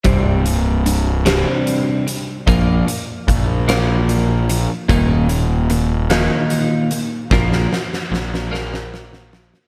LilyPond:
<<
  \new Staff \with { instrumentName = "Clean electric guitar" } { \clef bass \time 6/8 \key c \minor \tempo 4. = 50 <c, g, c>8 <c, g,>8 <c, g,>8 <c, g, c>4 <c, g,>8 | <bes, f bes>8 <bes, f>8 <bes, f>8 <bes, f bes>4 <bes, f>8 | <ees, bes, ees>8 <ees, bes,>8 <ees, bes,>8 <ees, bes, ees>4 <ees, bes,>8 | <bes, f bes>8 <bes, f>8 <bes, f>8 <bes, f bes>4 <bes, f>8 | }
  \new Staff \with { instrumentName = "Picked electric bass" } { \clef bass \time 6/8 \key c \minor c,,2 r4 | bes,,8 r8 bes,,2 | ees,,2 r4 | bes,,8 r8 bes,,2 | }
  \new DrumStaff \with { instrumentName = "Drums" } \drummode { \time 6/8 <hh bd>8 hh8 hh8 <hh sn>8 hh8 hh8 | <hh bd>8 hh8 <hh bd>8 <hh sn>8 hh8 hh8 | <hh bd>8 hh8 hh8 <hh sn>8 hh8 hh8 | <bd sn>16 sn16 sn16 sn16 sn16 sn16 sn16 sn16 sn16 sn16 sn16 sn16 | }
>>